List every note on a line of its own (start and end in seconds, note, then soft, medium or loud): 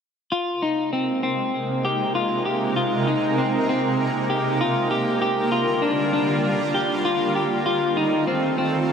0.32 5.17 C3 medium
0.32 5.18 G#3 medium
0.32 7.62 A#3 medium
0.32 5.18 D#4 medium
0.32 0.62 F4 medium
0.32 7.62 A#4 medium
0.62 0.92 D#4 medium
0.93 1.22 C4 medium
1.23 1.84 C4 medium
1.85 2.15 G4 medium
2.15 2.45 F4 medium
2.45 2.76 G4 medium
2.76 3.07 F4 medium
3.07 3.38 D#4 medium
3.38 3.68 C4 medium
3.69 4.30 C4 medium
4.30 4.60 G4 medium
4.61 4.90 F4 medium
4.91 5.20 G4 medium
5.21 7.64 D3 medium
5.21 7.64 G3 medium
5.21 7.64 F4 medium
5.21 5.51 G4 medium
5.52 5.82 F4 medium
5.82 6.12 D4 medium
6.13 6.74 D4 medium
6.74 7.05 G4 medium
7.05 7.35 F4 medium
7.35 7.65 G4 medium
7.66 8.93 D#3 medium
7.66 8.93 A3 medium
7.66 8.93 C4 medium
7.66 8.93 F4 medium
7.66 7.97 F4 medium
7.66 8.93 A4 medium
7.97 8.27 D#4 medium
8.27 8.57 C4 medium
8.58 8.93 C4 medium